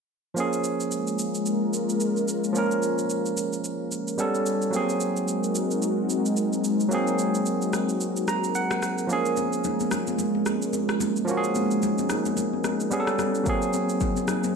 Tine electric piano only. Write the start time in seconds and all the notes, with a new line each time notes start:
0.34 F3 A#3 C#4
0.40 G#4
2.53 F3 A#3 C#4
2.58 A#4
4.18 G3 B3 C#4 A4
4.71 F#3 A#3 C4
4.76 G#4
6.89 F#3 A#3 C4
6.95 G#4
8.28 A#5
8.55 F#5
9.07 F3 A#3 C#4
9.13 G#4
11.25 F3 A#3 C#4
11.31 F#4
11.37 G#4
12.90 G3 B3 C#4 G#4
13.00 A4
13.44 F#3 A#3 C4
13.49 G#4